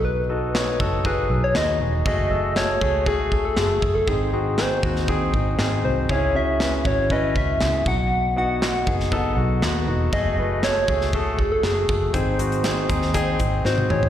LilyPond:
<<
  \new Staff \with { instrumentName = "Soft synth lead" } { \time 4/4 \key b \mixolydian \tempo 4 = 119 b'2 b'8. cis''16 dis''8. r16 | dis''4 cis''4 gis'8. a'16 gis'8. a'16 | gis'8 gis'8 bis'2 r8 bis'8 | cis''8 e''4 cis''8 dis''8 e''4 fis''8~ |
fis''8 fis''2 r4. | dis''4 cis''4 gis'8. a'16 gis'4 | bis'2. bis'8 cis''8 | }
  \new Staff \with { instrumentName = "Grand piano" } { \time 4/4 \key b \mixolydian <dis' fis' b'>8 <dis' fis' a'>8 <dis' fis' cis''>8 <dis' fis' a'>8 <dis' fis' gis'>8 <dis' fis' a'>8 <dis' fis' b'>8 <dis' fis' gis'>8 | <a fis' gis'>8 <a fis' a'>8 <a fis' a'>8 <a fis' gis'>8 <a fis' gis'>8 <a fis' a'>8 <a fis' a'>8 <a fis' a'>8 | <bis dis' gis'>8 <bis dis' fis'>8 <bis dis' gis'>8 <bis dis' fis'>8 <bis dis' gis'>8 <bis dis' gis'>8 <bis dis' gis'>8 <bis dis' fis'>8 | <cis' e' gis'>8 <cis' e' fis'>8 <cis' e' b'>8 <cis' e' fis'>8 <cis' e' b'>8 <cis' e' fis'>8 <cis' e' gis'>8 <b dis' fis'>8~ |
<b dis' fis'>8 <b dis' fis'>8 <b dis' fis'>8 <b dis' gis'>8 <b dis' a'>8 <b dis' fis'>8 <b dis' fis'>8 <b dis' fis'>8 | <a fis' gis'>8 <a fis' b'>8 <a fis' a'>8 <a fis' gis'>8 <a fis' a'>8 <a fis' a'>8 <a fis' gis'>8 <a fis' a'>8 | <bis dis' gis'>8 <bis dis' fis'>8 <bis dis' gis'>8 <bis dis' gis'>8 <bis dis' gis'>8 <bis dis' gis'>8 <bis dis' fis'>8 <bis dis' gis'>8 | }
  \new Staff \with { instrumentName = "Grand piano" } { \clef bass \time 4/4 \key b \mixolydian b,4 r2. | r1 | gis,4. r2 r8 | cis4. r2 b,8~ |
b,4 r2. | r1 | gis,4. r2 r8 | }
  \new Staff \with { instrumentName = "Fingered electric bass" } { \clef bass \time 4/4 \key b \mixolydian b,,4. fis,,4 b,,8 dis,8 e,,8 | fis,,4. cis,4 fis,,8 fis,,8 fis,,8 | gis,,4. dis,4 gis,,8 gis,,8 bis,,8 | cis,4. gis,,4 cis,8 cis,8 b,,8~ |
b,,4. fis,,4 b,,8 dis,8 e,,8 | fis,,4. cis,4 fis,,8 fis,,8 fis,,8 | gis,,4. dis,4 gis,,8 gis,,8 a,,8 | }
  \new DrumStaff \with { instrumentName = "Drums" } \drummode { \time 4/4 r4 <hc sn>8 bd8 bd4 <hc sn>4 | bd4 <hc sn>8 bd8 bd8 bd8 <hc sn>8 bd8 | bd4 <hc sn>8 bd16 sn16 bd8 bd8 <hc sn>4 | bd4 <hc sn>8 bd8 bd8 bd8 <hc sn>8 bd8 |
r4 <hc sn>8 bd16 sn16 bd4 <hc sn>4 | bd4 <hc sn>8 bd16 sn16 bd8 bd8 <hc sn>8 bd8 | <hh bd>8 hh16 hh16 <hc hh sn>8 <hh bd>16 sn16 <hh bd>8 <hh bd>8 sn16 tommh16 toml16 tomfh16 | }
>>